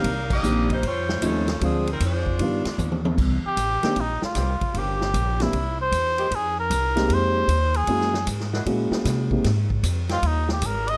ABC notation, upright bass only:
X:1
M:4/4
L:1/8
Q:"Swing" 1/4=153
K:Cm
V:1 name="Upright bass" clef=bass
C,,2 B,,,2 ^E,,2 _E,,2 | D,,2 F,,2 G,, z E,,2 | C,, z =A,,, z B,,, z C,, z | G,,,2 B,,,2 C,,2 =E,,2 |
F,,2 C,,2 F,,2 E,,2 | ^F,,2 ^G,,2 ^A,, z C,2 | A,,2 F,,2 E,,2 A,,,2 |]